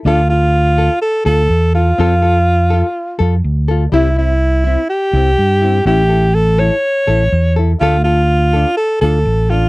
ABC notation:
X:1
M:4/4
L:1/8
Q:1/4=124
K:Dm
V:1 name="Alto saxophone"
F F3 A A2 F- | F4- F z3 | E E3 G4 | G2 A ^c4 z |
F F3 A A2 F |]
V:2 name="Nylon-string guitar"
[DFA] F z [FA] z [FA] z [FA] | [CFA] [FA] z [FA] z [FA] z [FA] | [G,CE] [CE] z [CE] z [CE] z [CE] | [^CE] [EA] z [EA] z [EA] z [EA] |
[A,DFA] [FA] z [DFA] z [DFA] z [DFA] |]
V:3 name="Fingered electric bass" clef=bass
D,,4 z D,, E,,2 | F,,4 z F,, D,,2 | C,,4 z C,, G,,2 | A,,,4 z A,,, E,,2 |
D,,4 z D,, A,,,2 |]